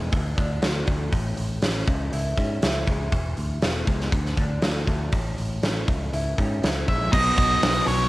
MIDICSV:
0, 0, Header, 1, 6, 480
1, 0, Start_track
1, 0, Tempo, 500000
1, 1083, Time_signature, 4, 2, 24, 8
1, 7763, End_track
2, 0, Start_track
2, 0, Title_t, "Lead electric guitar"
2, 0, Program_c, 0, 29
2, 6610, Note_on_c, 0, 76, 78
2, 6838, Note_off_c, 0, 76, 0
2, 6842, Note_on_c, 0, 75, 91
2, 7522, Note_off_c, 0, 75, 0
2, 7559, Note_on_c, 0, 73, 93
2, 7763, Note_off_c, 0, 73, 0
2, 7763, End_track
3, 0, Start_track
3, 0, Title_t, "Clean electric guitar"
3, 0, Program_c, 1, 27
3, 0, Note_on_c, 1, 52, 70
3, 0, Note_on_c, 1, 56, 68
3, 0, Note_on_c, 1, 59, 65
3, 119, Note_off_c, 1, 52, 0
3, 123, Note_off_c, 1, 59, 0
3, 123, Note_on_c, 1, 50, 68
3, 124, Note_off_c, 1, 56, 0
3, 360, Note_on_c, 1, 62, 60
3, 595, Note_on_c, 1, 66, 69
3, 844, Note_on_c, 1, 57, 64
3, 1079, Note_off_c, 1, 66, 0
3, 1082, Note_off_c, 1, 62, 0
3, 1083, Note_off_c, 1, 50, 0
3, 1083, Note_off_c, 1, 57, 0
3, 1083, Note_on_c, 1, 45, 74
3, 1566, Note_on_c, 1, 61, 69
3, 1804, Note_off_c, 1, 45, 0
3, 1805, Note_off_c, 1, 61, 0
3, 1806, Note_on_c, 1, 49, 65
3, 2042, Note_on_c, 1, 64, 69
3, 2286, Note_on_c, 1, 61, 61
3, 2513, Note_off_c, 1, 64, 0
3, 2524, Note_on_c, 1, 64, 74
3, 2764, Note_on_c, 1, 56, 64
3, 3002, Note_off_c, 1, 49, 0
3, 3005, Note_off_c, 1, 56, 0
3, 3005, Note_off_c, 1, 64, 0
3, 3006, Note_off_c, 1, 61, 0
3, 3006, Note_on_c, 1, 52, 73
3, 3481, Note_on_c, 1, 59, 69
3, 3716, Note_on_c, 1, 56, 69
3, 3956, Note_off_c, 1, 52, 0
3, 3960, Note_on_c, 1, 50, 64
3, 3962, Note_off_c, 1, 56, 0
3, 3964, Note_off_c, 1, 59, 0
3, 4203, Note_on_c, 1, 62, 62
3, 4437, Note_on_c, 1, 66, 71
3, 4680, Note_on_c, 1, 57, 63
3, 4923, Note_off_c, 1, 66, 0
3, 4924, Note_off_c, 1, 57, 0
3, 4925, Note_off_c, 1, 50, 0
3, 4926, Note_off_c, 1, 62, 0
3, 4927, Note_on_c, 1, 45, 75
3, 5405, Note_on_c, 1, 61, 62
3, 5647, Note_off_c, 1, 61, 0
3, 5647, Note_on_c, 1, 49, 66
3, 5648, Note_off_c, 1, 45, 0
3, 5889, Note_on_c, 1, 64, 72
3, 6131, Note_on_c, 1, 61, 61
3, 6358, Note_off_c, 1, 64, 0
3, 6369, Note_on_c, 1, 64, 69
3, 6609, Note_on_c, 1, 56, 62
3, 6845, Note_off_c, 1, 49, 0
3, 6846, Note_off_c, 1, 64, 0
3, 6847, Note_off_c, 1, 56, 0
3, 6847, Note_off_c, 1, 61, 0
3, 7763, End_track
4, 0, Start_track
4, 0, Title_t, "Overdriven electric guitar"
4, 0, Program_c, 2, 29
4, 6840, Note_on_c, 2, 47, 95
4, 6860, Note_on_c, 2, 54, 110
4, 6876, Note_on_c, 2, 59, 105
4, 7763, Note_off_c, 2, 47, 0
4, 7763, Note_off_c, 2, 54, 0
4, 7763, Note_off_c, 2, 59, 0
4, 7763, End_track
5, 0, Start_track
5, 0, Title_t, "Picked electric bass"
5, 0, Program_c, 3, 34
5, 118, Note_on_c, 3, 38, 85
5, 313, Note_off_c, 3, 38, 0
5, 361, Note_on_c, 3, 38, 84
5, 555, Note_off_c, 3, 38, 0
5, 602, Note_on_c, 3, 38, 85
5, 795, Note_off_c, 3, 38, 0
5, 840, Note_on_c, 3, 38, 81
5, 1034, Note_off_c, 3, 38, 0
5, 1082, Note_on_c, 3, 33, 80
5, 1275, Note_off_c, 3, 33, 0
5, 1326, Note_on_c, 3, 33, 81
5, 1518, Note_off_c, 3, 33, 0
5, 1555, Note_on_c, 3, 33, 77
5, 1752, Note_off_c, 3, 33, 0
5, 1800, Note_on_c, 3, 37, 84
5, 1995, Note_off_c, 3, 37, 0
5, 2039, Note_on_c, 3, 37, 82
5, 2234, Note_off_c, 3, 37, 0
5, 2277, Note_on_c, 3, 44, 83
5, 2473, Note_off_c, 3, 44, 0
5, 2529, Note_on_c, 3, 37, 87
5, 2721, Note_off_c, 3, 37, 0
5, 2758, Note_on_c, 3, 37, 83
5, 2954, Note_off_c, 3, 37, 0
5, 2994, Note_on_c, 3, 28, 85
5, 3192, Note_off_c, 3, 28, 0
5, 3243, Note_on_c, 3, 38, 75
5, 3437, Note_off_c, 3, 38, 0
5, 3475, Note_on_c, 3, 28, 79
5, 3673, Note_off_c, 3, 28, 0
5, 3718, Note_on_c, 3, 37, 79
5, 3915, Note_off_c, 3, 37, 0
5, 3956, Note_on_c, 3, 38, 84
5, 4153, Note_off_c, 3, 38, 0
5, 4196, Note_on_c, 3, 38, 78
5, 4394, Note_off_c, 3, 38, 0
5, 4441, Note_on_c, 3, 38, 86
5, 4637, Note_off_c, 3, 38, 0
5, 4678, Note_on_c, 3, 38, 79
5, 4875, Note_off_c, 3, 38, 0
5, 4920, Note_on_c, 3, 33, 84
5, 5117, Note_off_c, 3, 33, 0
5, 5167, Note_on_c, 3, 33, 78
5, 5360, Note_off_c, 3, 33, 0
5, 5402, Note_on_c, 3, 33, 82
5, 5597, Note_off_c, 3, 33, 0
5, 5645, Note_on_c, 3, 37, 84
5, 5839, Note_off_c, 3, 37, 0
5, 5882, Note_on_c, 3, 37, 82
5, 6077, Note_off_c, 3, 37, 0
5, 6130, Note_on_c, 3, 44, 78
5, 6321, Note_off_c, 3, 44, 0
5, 6370, Note_on_c, 3, 37, 83
5, 6561, Note_off_c, 3, 37, 0
5, 6605, Note_on_c, 3, 34, 80
5, 6797, Note_off_c, 3, 34, 0
5, 6844, Note_on_c, 3, 35, 96
5, 7013, Note_off_c, 3, 35, 0
5, 7079, Note_on_c, 3, 35, 89
5, 7249, Note_off_c, 3, 35, 0
5, 7326, Note_on_c, 3, 35, 89
5, 7493, Note_off_c, 3, 35, 0
5, 7558, Note_on_c, 3, 35, 98
5, 7727, Note_off_c, 3, 35, 0
5, 7763, End_track
6, 0, Start_track
6, 0, Title_t, "Drums"
6, 119, Note_on_c, 9, 46, 64
6, 122, Note_on_c, 9, 36, 104
6, 215, Note_off_c, 9, 46, 0
6, 218, Note_off_c, 9, 36, 0
6, 363, Note_on_c, 9, 36, 80
6, 365, Note_on_c, 9, 46, 46
6, 459, Note_off_c, 9, 36, 0
6, 461, Note_off_c, 9, 46, 0
6, 596, Note_on_c, 9, 46, 64
6, 601, Note_on_c, 9, 38, 99
6, 692, Note_off_c, 9, 46, 0
6, 697, Note_off_c, 9, 38, 0
6, 836, Note_on_c, 9, 46, 52
6, 842, Note_on_c, 9, 36, 81
6, 932, Note_off_c, 9, 46, 0
6, 938, Note_off_c, 9, 36, 0
6, 1079, Note_on_c, 9, 46, 64
6, 1080, Note_on_c, 9, 36, 94
6, 1175, Note_off_c, 9, 46, 0
6, 1176, Note_off_c, 9, 36, 0
6, 1317, Note_on_c, 9, 46, 53
6, 1413, Note_off_c, 9, 46, 0
6, 1555, Note_on_c, 9, 46, 67
6, 1560, Note_on_c, 9, 38, 97
6, 1651, Note_off_c, 9, 46, 0
6, 1656, Note_off_c, 9, 38, 0
6, 1800, Note_on_c, 9, 36, 101
6, 1801, Note_on_c, 9, 46, 52
6, 1896, Note_off_c, 9, 36, 0
6, 1897, Note_off_c, 9, 46, 0
6, 2043, Note_on_c, 9, 46, 63
6, 2139, Note_off_c, 9, 46, 0
6, 2280, Note_on_c, 9, 36, 76
6, 2281, Note_on_c, 9, 46, 50
6, 2376, Note_off_c, 9, 36, 0
6, 2377, Note_off_c, 9, 46, 0
6, 2519, Note_on_c, 9, 46, 61
6, 2524, Note_on_c, 9, 38, 100
6, 2615, Note_off_c, 9, 46, 0
6, 2620, Note_off_c, 9, 38, 0
6, 2756, Note_on_c, 9, 46, 47
6, 2759, Note_on_c, 9, 36, 83
6, 2852, Note_off_c, 9, 46, 0
6, 2855, Note_off_c, 9, 36, 0
6, 2995, Note_on_c, 9, 46, 57
6, 2999, Note_on_c, 9, 36, 102
6, 3091, Note_off_c, 9, 46, 0
6, 3095, Note_off_c, 9, 36, 0
6, 3235, Note_on_c, 9, 46, 49
6, 3331, Note_off_c, 9, 46, 0
6, 3475, Note_on_c, 9, 46, 61
6, 3479, Note_on_c, 9, 38, 100
6, 3571, Note_off_c, 9, 46, 0
6, 3575, Note_off_c, 9, 38, 0
6, 3719, Note_on_c, 9, 36, 80
6, 3720, Note_on_c, 9, 46, 45
6, 3815, Note_off_c, 9, 36, 0
6, 3816, Note_off_c, 9, 46, 0
6, 3844, Note_on_c, 9, 38, 31
6, 3940, Note_off_c, 9, 38, 0
6, 3959, Note_on_c, 9, 36, 110
6, 3959, Note_on_c, 9, 46, 62
6, 4055, Note_off_c, 9, 36, 0
6, 4055, Note_off_c, 9, 46, 0
6, 4083, Note_on_c, 9, 38, 30
6, 4179, Note_off_c, 9, 38, 0
6, 4196, Note_on_c, 9, 46, 45
6, 4199, Note_on_c, 9, 36, 83
6, 4292, Note_off_c, 9, 46, 0
6, 4295, Note_off_c, 9, 36, 0
6, 4434, Note_on_c, 9, 46, 62
6, 4439, Note_on_c, 9, 38, 104
6, 4530, Note_off_c, 9, 46, 0
6, 4535, Note_off_c, 9, 38, 0
6, 4678, Note_on_c, 9, 46, 49
6, 4679, Note_on_c, 9, 36, 78
6, 4774, Note_off_c, 9, 46, 0
6, 4775, Note_off_c, 9, 36, 0
6, 4918, Note_on_c, 9, 46, 62
6, 4922, Note_on_c, 9, 36, 98
6, 5014, Note_off_c, 9, 46, 0
6, 5018, Note_off_c, 9, 36, 0
6, 5165, Note_on_c, 9, 46, 53
6, 5261, Note_off_c, 9, 46, 0
6, 5403, Note_on_c, 9, 46, 65
6, 5408, Note_on_c, 9, 38, 104
6, 5499, Note_off_c, 9, 46, 0
6, 5504, Note_off_c, 9, 38, 0
6, 5645, Note_on_c, 9, 36, 102
6, 5645, Note_on_c, 9, 46, 52
6, 5741, Note_off_c, 9, 36, 0
6, 5741, Note_off_c, 9, 46, 0
6, 5889, Note_on_c, 9, 46, 66
6, 5985, Note_off_c, 9, 46, 0
6, 6127, Note_on_c, 9, 36, 83
6, 6130, Note_on_c, 9, 46, 50
6, 6223, Note_off_c, 9, 36, 0
6, 6226, Note_off_c, 9, 46, 0
6, 6370, Note_on_c, 9, 46, 62
6, 6374, Note_on_c, 9, 38, 104
6, 6466, Note_off_c, 9, 46, 0
6, 6470, Note_off_c, 9, 38, 0
6, 6606, Note_on_c, 9, 36, 78
6, 6606, Note_on_c, 9, 46, 48
6, 6702, Note_off_c, 9, 36, 0
6, 6702, Note_off_c, 9, 46, 0
6, 6843, Note_on_c, 9, 49, 123
6, 6845, Note_on_c, 9, 36, 119
6, 6939, Note_off_c, 9, 49, 0
6, 6941, Note_off_c, 9, 36, 0
6, 7083, Note_on_c, 9, 46, 68
6, 7084, Note_on_c, 9, 36, 94
6, 7179, Note_off_c, 9, 46, 0
6, 7180, Note_off_c, 9, 36, 0
6, 7322, Note_on_c, 9, 46, 87
6, 7327, Note_on_c, 9, 38, 119
6, 7418, Note_off_c, 9, 46, 0
6, 7423, Note_off_c, 9, 38, 0
6, 7562, Note_on_c, 9, 46, 65
6, 7658, Note_off_c, 9, 46, 0
6, 7763, End_track
0, 0, End_of_file